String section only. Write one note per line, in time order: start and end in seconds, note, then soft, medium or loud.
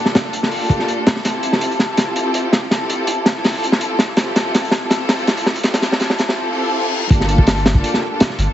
0.00 0.40 A#3 loud
0.00 0.41 D4 medium
0.00 0.41 F4 medium
0.00 0.40 G4 medium
0.00 0.41 A4 loud
0.43 1.23 A#3 loud
0.43 1.23 D4 medium
0.43 1.23 F4 medium
0.43 1.23 G4 medium
0.43 1.23 A4 loud
1.24 1.87 C4 loud
1.24 1.87 E4 medium
1.24 1.87 F4 medium
1.24 1.87 G4 medium
1.24 1.87 A4 loud
1.89 2.69 C4 loud
1.89 2.69 E4 medium
1.89 2.69 F4 medium
1.89 2.69 G4 medium
1.89 2.69 A4 loud
2.71 3.34 C4 loud
2.71 3.34 E4 medium
2.71 3.34 F4 medium
2.71 3.33 G4 medium
2.71 3.33 A4 loud
3.35 4.15 C4 loud
3.35 4.15 E4 medium
3.35 4.15 F4 medium
3.35 4.15 G4 medium
3.35 4.15 A4 loud
4.17 4.80 C4 loud
4.17 4.80 E4 medium
4.17 4.80 F4 medium
4.17 4.80 G4 medium
4.17 4.80 A4 loud
4.82 5.62 C4 loud
4.82 5.62 E4 loud
4.82 5.62 F4 medium
4.82 5.62 G4 medium
4.82 5.62 A4 loud
5.63 6.26 C4 loud
5.63 6.26 E4 medium
5.63 6.26 F4 medium
5.63 6.26 G4 medium
5.63 6.26 A4 loud
6.28 7.08 C4 loud
6.28 7.08 E4 loud
6.28 7.08 F4 loud
6.28 7.08 G4 medium
6.28 7.08 A4 loud
7.10 7.73 A#3 loud
7.10 7.73 D4 medium
7.10 7.73 F4 medium
7.10 7.73 G4 medium
7.10 7.73 A4 loud
7.75 8.10 A#3 loud
7.75 8.10 D4 medium
7.75 8.10 F4 medium
7.75 8.09 G4 medium
7.75 8.10 A4 loud
8.11 8.53 A#3 medium
8.11 8.53 D4 medium
8.11 8.53 F4 medium
8.11 8.53 G4 medium
8.11 8.53 A4 medium